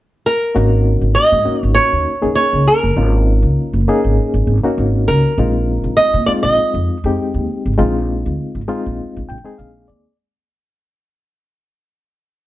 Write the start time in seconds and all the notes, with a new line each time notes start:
0.26 A#4
0.55 G#1 A#3 C#4 D#4 F#4
1.01 G#1
1.15 D#5
1.32 G#2
1.45 A#3 C#4 D#4 F#4, muted upright bass stroke
1.63 G#1 C#5
1.75 C#5
1.92 D#2
2.22 D#2 A#3 C#4 D#4 G#4
2.35 C#5
2.53 C#2
2.67 A#4
2.83 F#1
2.96 G#1 A#3 C#4 D#4 F4
3.43 C#2
3.73 F#1
3.88 A#3 C#4 D#4 G#4
4.04 G#1
4.34 G#1
4.47 G#1
4.63 A#3 C#4 D#4 F#4, muted upright bass stroke
4.78 G#1
5.08 C#2 A#4
5.38 A#1 G#3 C4 D#4 F4
5.84 A#1
5.97 D#5
6.14 A#2
6.26 G#3 C4 D#4 F4 D5, muted upright bass stroke
6.43 A#1 D#5
6.74 F2
7.04 F2 G#3 C4 D#4 G4
7.34 D#2
7.66 G#1
7.78 A#1 G#3 C4 D#4 F4
8.26 D2
8.55 G#1
8.68 G#3 C4 D#4 F4
8.86 A#1
9.16 A#1
9.29 A#1 G5
9.44 G#3 C4 D#4 G#4
9.58 A#1 F5
9.88 D#2 D5